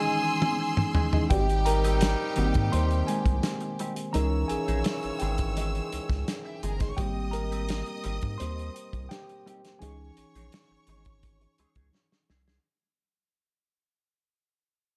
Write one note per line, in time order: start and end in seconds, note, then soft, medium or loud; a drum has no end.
0.00 1.33 D#3 medium
0.00 0.21 E3 medium
0.00 1.33 E3 medium
0.00 0.22 G#3 medium
0.00 1.33 G#3 medium
0.00 1.33 C#4 medium
0.00 0.22 D#4 medium
0.00 1.33 D#4 medium
0.00 0.22 G#4 medium
0.00 1.27 G#4 medium
0.00 0.91 G#5 medium
0.00 1.27 C6 medium
0.00 1.27 E6 medium
0.42 muted clean electric guitar stroke soft
0.42 high tom medium
0.60 muted clean electric guitar stroke soft
0.77 muted clean electric guitar stroke soft
0.77 mid tom medium
0.95 1.06 E3 soft
0.95 1.06 G#3 medium
0.95 1.06 D#4 medium
0.95 1.07 G#4 medium
0.95 floor tom medium
1.13 1.24 E3 soft
1.13 1.24 G#3 soft
1.13 1.24 D#4 medium
1.13 1.24 G#4 medium
1.13 floor tom medium
1.30 2.16 G#1 loud
1.30 3.75 C3 medium
1.30 1.51 G3 medium
1.30 3.75 G3 medium
1.30 1.49 C4 medium
1.30 3.75 D#4 medium
1.30 1.49 D#4 medium
1.30 3.74 G4 loud
1.30 1.64 G4 medium
1.30 1.48 G4 medium
1.30 3.75 G5 loud
1.30 1.67 G5 medium
1.30 kick loud
1.30 closed hi-hat medium
1.49 closed hi-hat soft
1.66 2.69 A#4 medium
1.66 2.76 A#5 loud
1.66 muted clean electric guitar stroke soft
1.66 closed hi-hat medium
1.84 1.95 G3 medium
1.84 1.95 C4 soft
1.84 1.95 D#4 medium
1.84 1.95 G4 medium
1.84 closed hi-hat medium
2.01 snare loud
2.01 closed hi-hat loud
2.20 muted clean electric guitar stroke soft
2.36 2.53 G#1 medium
2.36 4.10 D#3 soft
2.36 2.57 G3 medium
2.36 4.10 A#3 soft
2.36 4.11 C4 medium
2.36 2.55 C4 medium
2.36 2.54 D#4 medium
2.36 2.53 G4 medium
2.36 closed hi-hat medium
2.54 2.70 G#2 loud
2.54 muted clean electric guitar stroke soft
2.54 kick medium
2.54 closed hi-hat soft
2.72 3.03 D#2 loud
2.72 3.05 G3 medium
2.72 3.05 C4 medium
2.72 3.05 D#4 medium
2.72 3.06 G4 medium
2.72 3.06 C5 medium
2.72 3.05 C6 loud
2.72 closed hi-hat medium
2.91 closed hi-hat soft
3.07 4.11 G#3 medium
3.07 4.17 G#5 loud
3.07 muted clean electric guitar stroke soft
3.07 closed hi-hat medium
3.26 3.41 C2 medium
3.26 muted clean electric guitar stroke soft
3.26 kick medium
3.26 closed hi-hat medium
3.43 muted clean electric guitar stroke soft
3.43 snare medium
3.43 closed hi-hat medium
3.60 muted clean electric guitar stroke soft
3.60 closed hi-hat soft
3.79 3.93 G3 medium
3.79 3.93 C4 medium
3.79 3.93 D#4 medium
3.79 3.94 G4 medium
3.79 closed hi-hat medium
3.96 muted clean electric guitar stroke soft
3.96 closed hi-hat medium
4.13 4.45 C#2 loud
4.13 6.59 C#3 medium
4.13 5.16 E3 medium
4.13 4.28 E3 medium
4.13 6.59 E3 medium
4.13 6.59 G#3 medium
4.13 4.28 G#3 medium
4.13 5.17 C#4 medium
4.13 5.17 D#4 medium
4.13 4.28 D#4 medium
4.13 4.29 G#4 medium
4.13 4.48 A#4 medium
4.13 6.33 C#5 medium
4.13 4.50 A#5 medium
4.13 6.33 E6 loud
4.13 closed hi-hat medium
4.48 4.57 A#1 soft
4.48 5.17 G#4 medium
4.48 5.22 G#5 medium
4.48 muted clean electric guitar stroke soft
4.48 closed hi-hat medium
4.68 4.83 A#1 medium
4.68 4.79 E3 soft
4.68 4.79 G#3 soft
4.68 4.79 D#4 medium
4.68 4.78 G#4 medium
4.68 closed hi-hat medium
4.84 snare loud
4.84 closed hi-hat medium
5.03 5.11 G#1 soft
5.03 muted clean electric guitar stroke soft
5.03 closed hi-hat soft
5.19 5.81 G#1 medium
5.19 5.35 E3 medium
5.19 5.35 G#3 medium
5.19 5.35 D#4 medium
5.19 6.59 G#4 medium
5.19 5.35 G#4 medium
5.19 6.58 G5 medium
5.19 closed hi-hat medium
5.38 kick medium
5.38 closed hi-hat medium
5.57 5.89 E3 medium
5.57 5.89 G#3 medium
5.57 5.89 D#4 medium
5.57 5.90 G#4 medium
5.57 closed hi-hat medium
5.75 closed hi-hat soft
5.92 6.00 C#2 soft
5.92 muted clean electric guitar stroke soft
5.92 closed hi-hat medium
6.09 6.24 C#2 medium
6.09 muted clean electric guitar stroke soft
6.09 kick loud
6.09 snare soft
6.09 closed hi-hat soft
6.28 muted clean electric guitar stroke soft
6.28 snare medium
6.28 closed hi-hat medium
6.45 6.54 E4 medium
6.45 6.54 E5 medium
6.45 muted clean electric guitar stroke soft
6.54 6.62 G4 medium
6.54 6.63 G5 medium
6.63 6.93 G1 medium
6.63 6.73 E3 medium
6.63 6.74 G#3 medium
6.63 6.74 D#4 medium
6.63 6.72 G#4 medium
6.63 6.74 G#4 medium
6.63 6.71 G#5 medium
6.63 closed hi-hat medium
6.70 6.80 A#4 medium
6.70 6.80 A#5 medium
6.80 6.92 E3 soft
6.80 6.91 G#3 soft
6.80 6.91 D#4 medium
6.80 6.91 G#4 medium
6.80 6.89 C5 medium
6.80 6.89 C6 medium
6.80 kick loud
6.80 snare soft
6.80 closed hi-hat medium
6.89 6.98 C#5 medium
6.89 6.98 C#6 medium
6.97 7.83 G#1 loud
6.97 8.00 G3 medium
6.97 7.11 G3 medium
6.97 8.00 A#3 medium
6.97 8.00 C4 medium
6.97 7.12 C4 medium
6.97 7.12 D#4 medium
6.97 7.31 G4 medium
6.97 7.12 G4 medium
6.97 9.42 D#5 loud
6.97 7.30 G5 medium
6.97 9.42 D#6 loud
6.97 kick loud
6.97 closed hi-hat medium
7.31 8.36 A#4 medium
7.31 8.35 A#5 loud
7.31 muted clean electric guitar stroke soft
7.31 closed hi-hat medium
7.52 7.62 G3 soft
7.52 7.62 C4 soft
7.52 7.62 D#4 medium
7.52 7.62 G4 medium
7.52 closed hi-hat medium
7.69 snare loud
7.69 closed hi-hat loud
7.86 muted clean electric guitar stroke soft
7.86 closed hi-hat soft
8.04 8.20 G#1 medium
8.04 8.18 G3 medium
8.04 8.18 C4 medium
8.04 8.18 D#4 medium
8.04 8.18 G4 medium
8.04 closed hi-hat medium
8.22 8.38 G#2 loud
8.22 kick medium
8.22 closed hi-hat soft
8.38 8.70 D#2 medium
8.38 8.72 G3 medium
8.38 8.73 C4 medium
8.38 8.73 D#4 medium
8.38 8.73 G4 medium
8.38 9.06 C5 medium
8.38 9.12 C6 medium
8.38 closed hi-hat medium
8.59 closed hi-hat soft
8.75 muted clean electric guitar stroke soft
8.75 closed hi-hat medium
8.93 9.08 C2 medium
8.93 muted clean electric guitar stroke soft
8.93 kick loud
8.93 closed hi-hat soft
9.09 9.77 G4 medium
9.09 9.83 G5 medium
9.09 muted clean electric guitar stroke soft
9.09 snare medium
9.09 closed hi-hat medium
9.29 muted clean electric guitar stroke soft
9.29 closed hi-hat soft
9.46 9.59 G3 medium
9.46 9.60 C4 medium
9.46 9.60 D#4 medium
9.46 9.60 G4 medium
9.46 closed hi-hat medium
9.65 muted clean electric guitar stroke soft
9.65 snare soft
9.65 closed hi-hat medium
9.79 10.11 C#2 loud
9.79 12.60 E3 medium
9.79 9.95 E3 medium
9.79 9.95 G#3 medium
9.79 12.60 C#4 medium
9.79 12.60 D#4 medium
9.79 9.95 D#4 medium
9.79 11.89 G#4 medium
9.79 12.25 C#5 medium
9.79 11.88 G#5 medium
9.79 12.26 C#6 loud
9.79 closed hi-hat medium
9.83 9.96 G#4 medium
10.01 muted clean electric guitar stroke soft
10.17 10.25 A#1 soft
10.17 muted clean electric guitar stroke soft
10.17 closed hi-hat medium
10.35 10.50 A#1 medium
10.35 10.46 E3 soft
10.35 10.46 G#3 soft
10.35 10.46 D#4 medium
10.35 10.45 G#4 medium
10.35 closed hi-hat medium
10.52 snare loud
10.52 closed hi-hat medium
10.71 10.78 G#1 soft
10.71 muted clean electric guitar stroke soft
10.87 11.47 G#1 medium
10.87 11.01 E3 medium
10.87 11.02 G#3 medium
10.87 11.02 D#4 medium
10.87 11.02 G#4 medium
10.87 closed hi-hat medium
11.05 kick medium
11.05 closed hi-hat soft
11.23 muted clean electric guitar stroke soft
11.23 kick medium
11.23 closed hi-hat medium
11.41 muted clean electric guitar stroke soft
11.41 closed hi-hat soft
11.58 11.66 C#2 soft
11.58 11.69 E3 medium
11.58 11.69 G#3 medium
11.58 11.70 D#4 medium
11.58 11.70 G#4 medium
11.58 closed hi-hat medium
11.75 11.91 C#2 medium
11.75 11.87 E3 soft
11.75 11.87 G#3 soft
11.75 11.87 D#4 soft
11.75 11.87 G#4 soft
11.75 kick medium
11.75 closed hi-hat soft
11.95 muted clean electric guitar stroke soft
11.95 snare soft
12.12 muted clean electric guitar stroke soft
12.12 snare medium
12.30 12.59 C2 medium
12.30 12.40 E3 medium
12.30 12.40 G#3 soft
12.30 12.41 D#4 medium
12.30 12.41 G#4 medium
12.30 snare medium
12.47 12.58 E3 soft
12.47 12.58 G#3 soft
12.47 12.58 D#4 medium
12.47 12.57 G#4 medium
12.47 snare medium